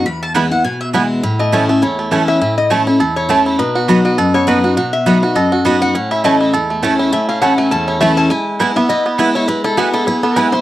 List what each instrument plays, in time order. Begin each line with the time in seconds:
0.06 steel-string acoustic guitar E2, mandolin B5
0.23 mandolin A5
0.34 steel-string acoustic guitar E3 G#3 B3 E4, mandolin B3 E4 B4 G#5, five-string banjo B3 E4
0.51 steel-string acoustic guitar B3 E4, mandolin F#5
0.64 steel-string acoustic guitar B2, mandolin G#5
0.81 mandolin E5
0.93 steel-string acoustic guitar E3 G#3 B3 E4, mandolin B3 E4 B4 G#5, five-string banjo B3 E4
1.23 steel-string acoustic guitar A2, five-string banjo E4
1.39 five-string banjo A3, resonator guitar played with a steel bar D#5
1.52 steel-string acoustic guitar E3 A3 C#4 E4, mandolin A3 E4 C#5 A5, five-string banjo C#4
1.69 five-string banjo A3, steel-string acoustic guitar C#4 E4
1.82 steel-string acoustic guitar E2, five-string banjo E4, resonator guitar played with a steel bar C#5
1.99 five-string banjo A3
2.11 steel-string acoustic guitar E3 A3 C#4 E4, mandolin A3 E4 C#5 A5, five-string banjo C#4
2.28 five-string banjo E4, resonator guitar played with a steel bar E5
2.41 steel-string acoustic guitar A2, five-string banjo E4
2.58 resonator guitar played with a steel bar D#5
2.70 steel-string acoustic guitar E3 A3 C#4 E4, mandolin A3 E4 C#5 A5, five-string banjo A3, resonator guitar played with a steel bar C#5
2.87 steel-string acoustic guitar C#4 E4, five-string banjo E4
3.00 steel-string acoustic guitar E2, five-string banjo A4
3.16 five-string banjo E4, resonator guitar played with a steel bar C#5
3.29 steel-string acoustic guitar E3 A3 C#4 E4, mandolin A3 E4 C#5 A5, five-string banjo A3
3.46 five-string banjo E4
3.59 steel-string acoustic guitar B2, five-string banjo D#4, resonator guitar played with a steel bar B4
3.75 five-string banjo F#4
3.88 steel-string acoustic guitar F#3 B3 D#4 F#4, mandolin B3 F#4 D#5 B5, five-string banjo B3
4.05 five-string banjo F#4, resonator guitar played with a steel bar D#5
4.18 steel-string acoustic guitar F#2, five-string banjo A4
4.34 five-string banjo B3, resonator guitar played with a steel bar C#5
4.47 steel-string acoustic guitar F#3 B3 D#4 F#4, mandolin B3 F#4 D#5 B5, five-string banjo D#4, resonator guitar played with a steel bar B4
4.64 steel-string acoustic guitar D#4 F#4, five-string banjo F#4
4.77 steel-string acoustic guitar B2, five-string banjo F#4
4.93 resonator guitar played with a steel bar E5
5.06 steel-string acoustic guitar F#3 B3 D#4 F#4, mandolin B3 F#4 D#5 B5, five-string banjo B3
5.22 steel-string acoustic guitar D#4 F#4, five-string banjo F#4
5.35 steel-string acoustic guitar F#2, five-string banjo A4, resonator guitar played with a steel bar D#5
5.52 five-string banjo F#4
5.65 steel-string acoustic guitar F#3 B3 D#4 F#4, mandolin B3 F#4 D#5 B5, five-string banjo B3
5.82 steel-string acoustic guitar D#4 F#4, five-string banjo F#4, resonator guitar played with a steel bar F#5
5.95 steel-string acoustic guitar A2, five-string banjo C#4
6.11 five-string banjo E4, resonator guitar played with a steel bar E5
6.24 steel-string acoustic guitar E3 A3 C#4 E4, mandolin A3 E4 C#5 A5, five-string banjo A3, resonator guitar played with a steel bar D#5
6.41 five-string banjo E4
6.53 steel-string acoustic guitar E2, five-string banjo A4
6.70 five-string banjo A3
6.82 steel-string acoustic guitar E3 A3 C#4 E4, mandolin A3 E4 C#5 A5, five-string banjo C#4
6.99 five-string banjo E4
7.12 steel-string acoustic guitar A2, five-string banjo A3, resonator guitar played with a steel bar E5
7.29 five-string banjo C#4, resonator guitar played with a steel bar F5
7.42 steel-string acoustic guitar E3 A3 C#4 E4, mandolin A3 E4 C#5 A5, five-string banjo E4, resonator guitar played with a steel bar F#5
7.58 five-string banjo A3, resonator guitar played with a steel bar G#5
7.71 steel-string acoustic guitar E2, five-string banjo C#4, resonator guitar played with a steel bar A5
7.88 five-string banjo E4, resonator guitar played with a steel bar C#5
8.00 steel-string acoustic guitar E3 A3 C#4 E4, mandolin A3 E4 C#5 A5, five-string banjo A3, resonator guitar played with a steel bar E5
8.17 five-string banjo C#4, resonator guitar played with a steel bar A5
8.30 steel-string acoustic guitar G#3, five-string banjo E4, resonator guitar played with a steel bar G#5
8.59 steel-string acoustic guitar G#3 B3 E4, mandolin B3 E4 B4 G#5, five-string banjo E4
8.76 five-string banjo B3, steel-string acoustic guitar B3 E4, resonator guitar played with a steel bar E5
8.89 steel-string acoustic guitar B3, five-string banjo E4, resonator guitar played with a steel bar D#5
9.06 five-string banjo B3
9.18 steel-string acoustic guitar G#3 B3 E4, mandolin B3 E4 B4 G#5, five-string banjo E4
9.35 five-string banjo E4, resonator guitar played with a steel bar C#5
9.48 steel-string acoustic guitar G#3, five-string banjo E4, resonator guitar played with a steel bar B4
9.64 five-string banjo E4, resonator guitar played with a steel bar A4
9.77 steel-string acoustic guitar G#3 B3 E4, mandolin B3 E4 B4 G#5, five-string banjo B3, resonator guitar played with a steel bar F#4
9.93 five-string banjo E4, resonator guitar played with a steel bar A4
10.07 steel-string acoustic guitar B3, five-string banjo E4, resonator guitar played with a steel bar G#4
10.23 five-string banjo B3, resonator guitar played with a steel bar A4
10.36 steel-string acoustic guitar G#3 B3 E4, mandolin B3 E4 B4 G#5, five-string banjo E4, resonator guitar played with a steel bar B4
10.52 steel-string acoustic guitar B3 E4, five-string banjo E4, resonator guitar played with a steel bar C5